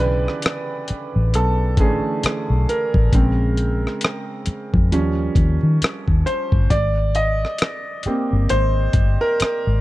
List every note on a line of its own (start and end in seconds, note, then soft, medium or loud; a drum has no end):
0.00 0.27 B1 medium
0.00 3.10 C#3 soft
0.00 1.78 D3 soft
0.00 1.78 E3 soft
0.00 3.09 B3 soft
0.00 1.80 C#4 soft
0.00 3.14 G4 medium
0.00 1.38 B4 medium
0.00 3.15 D5 loud
0.28 cross-stick soft
0.42 cross-stick loud
0.42 closed hi-hat medium
0.88 muted fingered electric bass stroke soft
0.88 closed hi-hat medium
1.16 1.35 A1 medium
1.34 1.78 B1 medium
1.34 1.76 A4 medium
1.34 closed hi-hat medium
1.77 1.99 A1 medium
1.77 2.20 D3 soft
1.77 2.20 E3 soft
1.77 2.20 A3 soft
1.77 2.20 C#4 soft
1.77 2.71 G#4 medium
1.77 kick medium
1.77 closed hi-hat soft
2.23 muted fingered electric bass stroke soft
2.23 cross-stick loud
2.23 closed hi-hat medium
2.50 2.64 B1 medium
2.69 5.33 A#4 medium
2.69 closed hi-hat soft
2.94 3.09 A1 medium
2.94 kick medium
3.12 3.85 A#1 medium
3.12 4.44 C#3 medium
3.12 4.44 G#3 soft
3.12 4.44 C4 medium
3.12 kick medium
3.12 closed hi-hat medium
3.57 closed hi-hat soft
3.87 cross-stick soft
4.01 cross-stick loud
4.01 closed hi-hat medium
4.46 muted fingered electric bass stroke soft
4.46 closed hi-hat medium
4.74 4.91 F2 medium
4.74 kick medium
4.91 5.27 D#2 medium
4.91 5.55 F3 medium
4.91 5.55 G3 soft
4.91 5.55 C#4 medium
4.91 closed hi-hat medium
5.35 5.58 D#2 medium
5.35 kick medium
5.35 closed hi-hat soft
5.63 5.78 D#3 medium
5.82 muted fingered electric bass stroke soft
5.82 cross-stick loud
5.82 closed hi-hat medium
6.08 6.23 D#2 medium
6.08 kick medium
6.26 6.72 C5 medium
6.26 closed hi-hat medium
6.52 6.67 G1 medium
6.52 kick medium
6.70 7.43 G#1 medium
6.70 7.17 D5 medium
6.70 kick medium
6.70 closed hi-hat medium
7.15 8.54 D#5 medium
7.15 closed hi-hat medium
7.45 cross-stick soft
7.58 cross-stick loud
7.58 closed hi-hat medium
8.03 9.81 G4 soft
8.03 muted fingered electric bass stroke soft
8.03 closed hi-hat medium
8.07 9.81 A#3 soft
8.07 9.81 C4 medium
8.33 8.47 G1 medium
8.49 8.86 G#1 medium
8.49 9.23 C5 loud
8.49 closed hi-hat medium
8.93 9.16 G1 medium
8.93 kick medium
8.93 closed hi-hat soft
9.21 9.81 A#4 loud
9.40 muted fingered electric bass stroke soft
9.40 cross-stick medium
9.40 closed hi-hat medium
9.67 9.81 G#1 medium